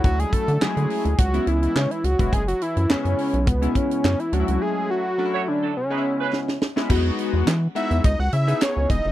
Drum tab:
CC |----------------|----------------|----------------|x---------------|
HH |xxxx-xoxxxxx-xxx|xxxx-xoxxxxx-xxx|----------------|--x-x-xxx-xxx-x-|
CP |----x-------x---|----x-------x---|----------------|----x-------x---|
SD |----o-------o---|----o-------o---|------------oooo|----o-------o---|
BD |o-o-----o------o|o-------o-o-----|----------------|o-------o-----o-|